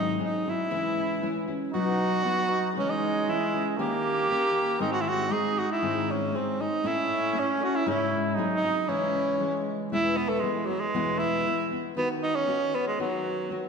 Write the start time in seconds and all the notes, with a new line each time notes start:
Already playing: G#2 D#3 F#3 C4 D#4 G#4
0.19 F#3 C4 D#4 G#4
0.24 D#4
0.45 F#3 C4 D#4 G#4
0.49 E4
0.70 C#3 E3 G#3 C#4 E4
1.22 E3 G#3 C#4 E4
1.48 G#3 C#4 E4
1.72 B2 F#3 B3 D#4 F#4
2.25 F#3 B3 D#4 F#4
2.49 D#4
2.73 G#3
2.77 C#3 E3 G#3 C#4
2.90 D#4
3.28 E3 G#3 C#4 E4
3.54 G#3 C#4 E4
3.77 D#3 A#3 C#4 G4
4.30 D#3 A#3 C#4 G4
4.79 G#2 D#3 G#3 C4 D#4 G#4
4.92 F#4
5.01 E4
5.08 F#4
5.29 G#3 C4 D#4 G#4
5.58 F#4
5.71 E4
5.82 G#2 D#3 G#3 C4 D#4 G#4
6.10 C#4
6.34 G#3 C4 D#4 G#4
6.60 G#3 C4 D#4 G#4
6.84 A2 A3 C#4 E4 A4
7.34 A3 C#4 E4 A4
7.39 C#4
7.61 C#4 E4 F#4 A4
7.75 E4
7.85 G#2 C#3 G#3 C#4 E4 G#4
8.35 F#3 C4 D#4 G#4
8.54 D#4
8.63 F#3 C4 D#4 G#4
8.78 D#4
8.87 C#3 E3 G#3 C#4 E4
9.39 E3 G#3 C#4 E4
9.92 E2 B2 E3 G#3 B3 E4
10.17 B3
10.29 A3
10.40 E3 G#3
10.44 G#3 B3 E4
10.66 F#3 E4
10.70 E3 G#3 B3
10.80 G#3
10.94 E2 B2 E3 G#3 B3 E4
11.18 E4
11.46 E3 G#3 B3 E4
11.72 E3 G#3 B3 E4
11.96 D#3 B3 D#4 F#4
12.23 D#4
12.35 C#4
12.47 D#3 B3 D#4 F#4
12.74 B3
12.87 G#3
12.99 D#3 F#3 B3 D#4 F#4
13.50 D#3 B3 D#4 F#4